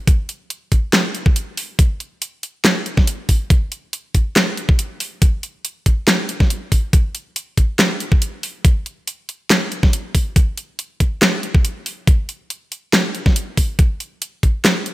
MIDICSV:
0, 0, Header, 1, 2, 480
1, 0, Start_track
1, 0, Tempo, 428571
1, 84, Time_signature, 4, 2, 24, 8
1, 16732, End_track
2, 0, Start_track
2, 0, Title_t, "Drums"
2, 84, Note_on_c, 9, 36, 121
2, 84, Note_on_c, 9, 42, 77
2, 196, Note_off_c, 9, 36, 0
2, 196, Note_off_c, 9, 42, 0
2, 324, Note_on_c, 9, 42, 52
2, 436, Note_off_c, 9, 42, 0
2, 564, Note_on_c, 9, 42, 77
2, 676, Note_off_c, 9, 42, 0
2, 803, Note_on_c, 9, 36, 62
2, 803, Note_on_c, 9, 42, 51
2, 915, Note_off_c, 9, 36, 0
2, 915, Note_off_c, 9, 42, 0
2, 1043, Note_on_c, 9, 38, 119
2, 1043, Note_on_c, 9, 39, 83
2, 1043, Note_on_c, 9, 42, 78
2, 1155, Note_off_c, 9, 38, 0
2, 1155, Note_off_c, 9, 39, 0
2, 1155, Note_off_c, 9, 42, 0
2, 1283, Note_on_c, 9, 42, 50
2, 1395, Note_off_c, 9, 42, 0
2, 1411, Note_on_c, 9, 36, 108
2, 1523, Note_off_c, 9, 36, 0
2, 1523, Note_on_c, 9, 42, 76
2, 1635, Note_off_c, 9, 42, 0
2, 1763, Note_on_c, 9, 46, 100
2, 1875, Note_off_c, 9, 46, 0
2, 2003, Note_on_c, 9, 36, 116
2, 2003, Note_on_c, 9, 42, 79
2, 2115, Note_off_c, 9, 36, 0
2, 2115, Note_off_c, 9, 42, 0
2, 2243, Note_on_c, 9, 42, 53
2, 2355, Note_off_c, 9, 42, 0
2, 2483, Note_on_c, 9, 42, 82
2, 2595, Note_off_c, 9, 42, 0
2, 2723, Note_on_c, 9, 42, 54
2, 2835, Note_off_c, 9, 42, 0
2, 2963, Note_on_c, 9, 38, 118
2, 2963, Note_on_c, 9, 39, 86
2, 2963, Note_on_c, 9, 42, 80
2, 3075, Note_off_c, 9, 38, 0
2, 3075, Note_off_c, 9, 39, 0
2, 3075, Note_off_c, 9, 42, 0
2, 3203, Note_on_c, 9, 42, 51
2, 3315, Note_off_c, 9, 42, 0
2, 3330, Note_on_c, 9, 38, 36
2, 3331, Note_on_c, 9, 36, 105
2, 3442, Note_off_c, 9, 38, 0
2, 3443, Note_off_c, 9, 36, 0
2, 3443, Note_on_c, 9, 42, 81
2, 3555, Note_off_c, 9, 42, 0
2, 3682, Note_on_c, 9, 46, 99
2, 3683, Note_on_c, 9, 36, 62
2, 3794, Note_off_c, 9, 46, 0
2, 3795, Note_off_c, 9, 36, 0
2, 3923, Note_on_c, 9, 36, 116
2, 3923, Note_on_c, 9, 42, 81
2, 4035, Note_off_c, 9, 36, 0
2, 4035, Note_off_c, 9, 42, 0
2, 4163, Note_on_c, 9, 42, 55
2, 4275, Note_off_c, 9, 42, 0
2, 4403, Note_on_c, 9, 42, 82
2, 4515, Note_off_c, 9, 42, 0
2, 4643, Note_on_c, 9, 36, 57
2, 4643, Note_on_c, 9, 42, 56
2, 4755, Note_off_c, 9, 36, 0
2, 4755, Note_off_c, 9, 42, 0
2, 4883, Note_on_c, 9, 38, 118
2, 4883, Note_on_c, 9, 39, 91
2, 4883, Note_on_c, 9, 42, 80
2, 4995, Note_off_c, 9, 38, 0
2, 4995, Note_off_c, 9, 39, 0
2, 4995, Note_off_c, 9, 42, 0
2, 5123, Note_on_c, 9, 42, 54
2, 5235, Note_off_c, 9, 42, 0
2, 5250, Note_on_c, 9, 36, 104
2, 5362, Note_off_c, 9, 36, 0
2, 5363, Note_on_c, 9, 42, 84
2, 5475, Note_off_c, 9, 42, 0
2, 5603, Note_on_c, 9, 46, 104
2, 5715, Note_off_c, 9, 46, 0
2, 5843, Note_on_c, 9, 36, 119
2, 5843, Note_on_c, 9, 42, 88
2, 5955, Note_off_c, 9, 36, 0
2, 5955, Note_off_c, 9, 42, 0
2, 6084, Note_on_c, 9, 42, 57
2, 6196, Note_off_c, 9, 42, 0
2, 6323, Note_on_c, 9, 42, 85
2, 6435, Note_off_c, 9, 42, 0
2, 6564, Note_on_c, 9, 36, 59
2, 6564, Note_on_c, 9, 42, 59
2, 6676, Note_off_c, 9, 36, 0
2, 6676, Note_off_c, 9, 42, 0
2, 6804, Note_on_c, 9, 38, 119
2, 6804, Note_on_c, 9, 39, 92
2, 6804, Note_on_c, 9, 42, 86
2, 6916, Note_off_c, 9, 38, 0
2, 6916, Note_off_c, 9, 39, 0
2, 6916, Note_off_c, 9, 42, 0
2, 7044, Note_on_c, 9, 42, 55
2, 7156, Note_off_c, 9, 42, 0
2, 7171, Note_on_c, 9, 36, 106
2, 7171, Note_on_c, 9, 38, 34
2, 7283, Note_off_c, 9, 36, 0
2, 7283, Note_off_c, 9, 38, 0
2, 7284, Note_on_c, 9, 42, 84
2, 7396, Note_off_c, 9, 42, 0
2, 7524, Note_on_c, 9, 36, 61
2, 7524, Note_on_c, 9, 46, 97
2, 7636, Note_off_c, 9, 36, 0
2, 7636, Note_off_c, 9, 46, 0
2, 7764, Note_on_c, 9, 36, 124
2, 7764, Note_on_c, 9, 42, 84
2, 7876, Note_off_c, 9, 36, 0
2, 7876, Note_off_c, 9, 42, 0
2, 8004, Note_on_c, 9, 42, 55
2, 8116, Note_off_c, 9, 42, 0
2, 8244, Note_on_c, 9, 42, 84
2, 8356, Note_off_c, 9, 42, 0
2, 8484, Note_on_c, 9, 36, 62
2, 8484, Note_on_c, 9, 42, 55
2, 8596, Note_off_c, 9, 36, 0
2, 8596, Note_off_c, 9, 42, 0
2, 8724, Note_on_c, 9, 38, 121
2, 8724, Note_on_c, 9, 39, 93
2, 8724, Note_on_c, 9, 42, 80
2, 8836, Note_off_c, 9, 38, 0
2, 8836, Note_off_c, 9, 39, 0
2, 8836, Note_off_c, 9, 42, 0
2, 8964, Note_on_c, 9, 42, 55
2, 9076, Note_off_c, 9, 42, 0
2, 9091, Note_on_c, 9, 36, 109
2, 9203, Note_off_c, 9, 36, 0
2, 9204, Note_on_c, 9, 42, 85
2, 9316, Note_off_c, 9, 42, 0
2, 9444, Note_on_c, 9, 46, 94
2, 9556, Note_off_c, 9, 46, 0
2, 9683, Note_on_c, 9, 42, 80
2, 9684, Note_on_c, 9, 36, 127
2, 9795, Note_off_c, 9, 42, 0
2, 9796, Note_off_c, 9, 36, 0
2, 9924, Note_on_c, 9, 42, 54
2, 10036, Note_off_c, 9, 42, 0
2, 10164, Note_on_c, 9, 42, 83
2, 10276, Note_off_c, 9, 42, 0
2, 10404, Note_on_c, 9, 42, 55
2, 10516, Note_off_c, 9, 42, 0
2, 10643, Note_on_c, 9, 38, 121
2, 10643, Note_on_c, 9, 39, 95
2, 10643, Note_on_c, 9, 42, 82
2, 10755, Note_off_c, 9, 38, 0
2, 10755, Note_off_c, 9, 39, 0
2, 10755, Note_off_c, 9, 42, 0
2, 10883, Note_on_c, 9, 42, 54
2, 10995, Note_off_c, 9, 42, 0
2, 11011, Note_on_c, 9, 36, 115
2, 11011, Note_on_c, 9, 38, 39
2, 11123, Note_off_c, 9, 36, 0
2, 11123, Note_off_c, 9, 38, 0
2, 11124, Note_on_c, 9, 42, 84
2, 11236, Note_off_c, 9, 42, 0
2, 11364, Note_on_c, 9, 36, 65
2, 11364, Note_on_c, 9, 46, 94
2, 11476, Note_off_c, 9, 36, 0
2, 11476, Note_off_c, 9, 46, 0
2, 11604, Note_on_c, 9, 36, 123
2, 11604, Note_on_c, 9, 42, 80
2, 11716, Note_off_c, 9, 36, 0
2, 11716, Note_off_c, 9, 42, 0
2, 11844, Note_on_c, 9, 42, 55
2, 11956, Note_off_c, 9, 42, 0
2, 12084, Note_on_c, 9, 42, 78
2, 12196, Note_off_c, 9, 42, 0
2, 12323, Note_on_c, 9, 36, 65
2, 12324, Note_on_c, 9, 42, 53
2, 12435, Note_off_c, 9, 36, 0
2, 12436, Note_off_c, 9, 42, 0
2, 12564, Note_on_c, 9, 38, 125
2, 12564, Note_on_c, 9, 39, 94
2, 12564, Note_on_c, 9, 42, 79
2, 12676, Note_off_c, 9, 38, 0
2, 12676, Note_off_c, 9, 39, 0
2, 12676, Note_off_c, 9, 42, 0
2, 12804, Note_on_c, 9, 42, 51
2, 12916, Note_off_c, 9, 42, 0
2, 12931, Note_on_c, 9, 36, 114
2, 13043, Note_off_c, 9, 36, 0
2, 13044, Note_on_c, 9, 42, 81
2, 13156, Note_off_c, 9, 42, 0
2, 13283, Note_on_c, 9, 46, 91
2, 13395, Note_off_c, 9, 46, 0
2, 13523, Note_on_c, 9, 36, 127
2, 13523, Note_on_c, 9, 42, 78
2, 13635, Note_off_c, 9, 36, 0
2, 13635, Note_off_c, 9, 42, 0
2, 13763, Note_on_c, 9, 42, 52
2, 13875, Note_off_c, 9, 42, 0
2, 14003, Note_on_c, 9, 42, 76
2, 14115, Note_off_c, 9, 42, 0
2, 14244, Note_on_c, 9, 42, 52
2, 14356, Note_off_c, 9, 42, 0
2, 14484, Note_on_c, 9, 38, 126
2, 14484, Note_on_c, 9, 39, 88
2, 14484, Note_on_c, 9, 42, 76
2, 14596, Note_off_c, 9, 38, 0
2, 14596, Note_off_c, 9, 39, 0
2, 14596, Note_off_c, 9, 42, 0
2, 14724, Note_on_c, 9, 42, 51
2, 14836, Note_off_c, 9, 42, 0
2, 14851, Note_on_c, 9, 36, 112
2, 14851, Note_on_c, 9, 38, 39
2, 14963, Note_off_c, 9, 36, 0
2, 14963, Note_off_c, 9, 38, 0
2, 14963, Note_on_c, 9, 42, 80
2, 15075, Note_off_c, 9, 42, 0
2, 15203, Note_on_c, 9, 36, 64
2, 15203, Note_on_c, 9, 46, 94
2, 15315, Note_off_c, 9, 36, 0
2, 15315, Note_off_c, 9, 46, 0
2, 15443, Note_on_c, 9, 36, 118
2, 15443, Note_on_c, 9, 42, 77
2, 15555, Note_off_c, 9, 36, 0
2, 15555, Note_off_c, 9, 42, 0
2, 15683, Note_on_c, 9, 42, 52
2, 15795, Note_off_c, 9, 42, 0
2, 15923, Note_on_c, 9, 42, 77
2, 16035, Note_off_c, 9, 42, 0
2, 16163, Note_on_c, 9, 36, 63
2, 16163, Note_on_c, 9, 42, 52
2, 16275, Note_off_c, 9, 36, 0
2, 16275, Note_off_c, 9, 42, 0
2, 16403, Note_on_c, 9, 38, 120
2, 16403, Note_on_c, 9, 39, 86
2, 16403, Note_on_c, 9, 42, 75
2, 16515, Note_off_c, 9, 38, 0
2, 16515, Note_off_c, 9, 39, 0
2, 16515, Note_off_c, 9, 42, 0
2, 16643, Note_on_c, 9, 42, 48
2, 16732, Note_off_c, 9, 42, 0
2, 16732, End_track
0, 0, End_of_file